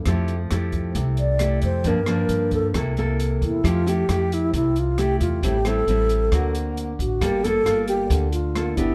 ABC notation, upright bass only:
X:1
M:4/4
L:1/8
Q:1/4=134
K:F
V:1 name="Upright bass" clef=bass
F,,2 F,,2 C,,3 F,, | G,,2 G,,2 C,,3 E,, | F,,2 F,,2 C,,3 E,, | A,,,2 A,,,2 D,,3 A,,, |
G,,,2 G,,,2 D,,3 G,,, |]